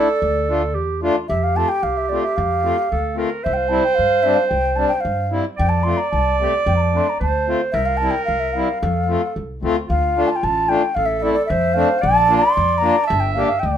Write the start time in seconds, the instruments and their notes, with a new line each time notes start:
Already playing: clarinet A4, flute D5
0.22 upright bass D2
0.48 accordion A3 D4 F4
0.74 upright bass E2, clarinet G4
1.01 accordion A3 D4 F4, clarinet F4
1.28 upright bass F2, clarinet G4, flute E5
1.43 flute F5
1.55 accordion A3 C4 F4, flute A5
1.69 flute G5
1.83 upright bass C2, flute F5
1.97 flute E5
2.09 accordion A3 C4 F4, flute D5
2.23 flute E5
2.36 upright bass F2, flute F5
2.62 accordion A3 C4 F4
2.91 upright bass D2, clarinet A4
3.15 accordion A3 C4 F4, clarinet A#4
3.43 upright bass C2, clarinet C5, flute E5
3.53 flute F5 G5
3.69 accordion G3 C4 E4, flute A5
3.84 flute G5
3.95 upright bass G2, flute F5
4.23 accordion G3 C4 D4, flute E5
4.35 flute F5
4.48 upright bass C2, flute G5
4.76 accordion G3 C4 D4, flute A5
4.89 flute G5
5.00 flute F5
5.05 upright bass G2
5.30 accordion G3 C4 E4
5.57 upright bass F2, clarinet D5, flute G5
5.69 flute A5
5.83 accordion A3 C4 F4, flute C6
5.97 flute A#5
6.11 upright bass C2, flute A5
6.40 accordion A3 C4 G4
6.66 upright bass F2, flute G5
6.76 flute A#5
6.81 flute A5
6.93 accordion A3 C4 D4, flute C6
7.09 flute A#5
7.20 upright bass D2, clarinet C5, flute A5
7.47 accordion A3 C4 F4
7.72 upright bass C2, clarinet A#4, flute E5
7.86 flute F5
7.97 accordion G3 C4, flute A5
8.02 accordion E4
8.11 flute G5
8.25 upright bass C2, flute F5
8.40 flute E5
8.53 accordion G3 C4 E4, flute F5
8.81 upright bass F2, clarinet A4
9.07 accordion A3 C4 F4
9.36 upright bass C2
9.62 upright bass D2, accordion A3 C4 F4
9.86 upright bass D2, clarinet F4, flute F5
10.16 accordion A3 D4 F4
10.28 flute A5
10.36 flute G5
10.43 upright bass A1, flute A5
10.68 accordion A3 D4 F4, flute G5
10.95 upright bass A1, clarinet A4, flute F5
11.06 flute E5
11.19 accordion A3 C4 E4, flute D5 E5
11.33 flute D5
11.46 flute E5
11.50 upright bass F2, clarinet C5
11.74 accordion A3 C4 D4, flute F5
11.99 clarinet D5, flute A5
12.03 upright bass A#1
12.28 accordion A#3 D4 F4
12.37 flute C6
12.57 upright bass F2
12.78 accordion A#3, flute A#5
12.83 accordion D4 F4
13.04 clarinet E5, flute A5
13.10 upright bass G1
13.20 flute G5
13.34 accordion A#3 D4 G4, flute F5
13.47 flute F5
13.60 upright bass D2, flute G5